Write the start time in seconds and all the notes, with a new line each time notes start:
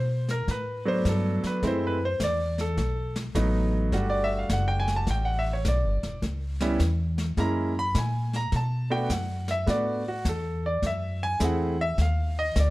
Already playing: B2 C5
0.28 A#4, snare
0.48 A2 B4, brush sweep, kick, snare
0.85 F#3 A3 B3 D4 C5
1.05 G2, kick, snare, hi-hat pedal
1.09 A4
1.43 B4, muted upright bass stroke, snare
1.62 F#2 G#3 A3 C4 E4, brush sweep, kick, snare
1.67 C5
1.87 B4
2.05 C5
2.20 E2 D5, kick, snare, hi-hat pedal
2.58 A4, snare
2.77 B1, brush sweep, kick, snare
3.16 snare
3.35 A1 F#3 A3 B3 D#4, kick, snare, hi-hat pedal
3.92 G1 G3 A3 D4 F#4, brush sweep, kick, snare
4.10 D5
4.24 E5
4.39 F5
4.49 F#1 F#5, kick, snare, hi-hat pedal
4.68 G5
4.80 G#5
4.88 snare
4.96 A5
5.07 A1 G5, brush sweep, kick, snare
5.25 F#5
5.39 E5
5.53 C#5
5.65 B1 D5, kick, snare, hi-hat pedal
5.84 G1
6.03 E1, snare
6.22 C#2, brush sweep, kick, snare
6.60 G3 B3 C#4 E4, snare
6.79 E2, kick, snare, hi-hat pedal
7.18 snare
7.37 F#2 G#3 A#3 C#4 E4 A#5, brush sweep, kick, snare
7.79 B5
7.95 A#2 G#5, kick, snare, hi-hat pedal
8.33 A#5, snare
8.52 B2, brush sweep, kick, snare
8.56 A5
8.90 A3 B3 D4 F#4 G5
9.10 F#2 F#5, kick, snare, hi-hat pedal
9.48 E5, snare
9.66 A2 A3 B3 D4 F#4 D5, brush sweep, kick, snare
10.08 F#4
10.25 E2, kick, snare, hi-hat pedal
10.29 A4
10.66 D5
10.82 F#2, brush sweep, kick, snare
10.87 E5
11.23 G#5
11.40 E2 A3 C4 E4 G#4, kick, snare, hi-hat pedal
11.44 F#5
11.81 E5
11.98 D#2 F5, brush sweep, kick, snare
12.39 D#5
12.56 D2, kick, snare, hi-hat pedal
12.60 D5